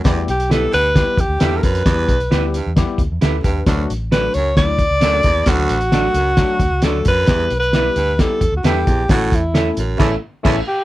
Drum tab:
CC |----------------|----------------|----------------|----------------|
HH |x-xxx-x-x-x-x-xx|x-xxx-x-x-x-x-x-|x-x-x-x-x-x-x-x-|x-xxx-x-x-x-x-x-|
SD |o---o---o---o---|o---o---o---o---|o---o---o---o---|o---o---o---o---|
BD |o-------o-o---o-|o-o-----o-o---o-|o-------o-o---o-|o-------o-o---o-|

CC |----------------|--------x---x---|
HH |x-xxx-x-x-x-x-x-|x-x-x-x---------|
SD |o---o---o---o---|o---o---o---o---|
BD |o-------o-o---o-|o-o-----o---o---|